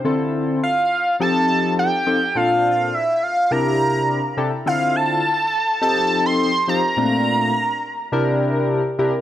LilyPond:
<<
  \new Staff \with { instrumentName = "Analog synth lead" } { \time 4/4 \key d \minor \tempo 4 = 104 r4 f''4 a''4 g''4 | f''4 e''8 f''8 bes''4. r8 | f''8 a''4. a''8. c'''8. bes''8~ | bes''2~ bes''8 r4. | }
  \new Staff \with { instrumentName = "Analog polysynth" } { \time 4/4 \key d \minor <d c' e' f' a'>4 r4 <f c' ees' g' a'>4 r8 <f c' ees' g' a'>16 r16 | <bes, c' d' f' a'>4 r4 <c d' e' g' bes'>4 r8 <c d' e' g' a'>16 r16 | <d c' e' f' a'>4 r4 <f c' ees' g' a'>4 r8 <f c' ees' g' c''>16 r16 | <bes, a c' d' f'>4 r4 <c d' e' g' bes'>4 r8 <c d' e' g' bes'>16 r16 | }
>>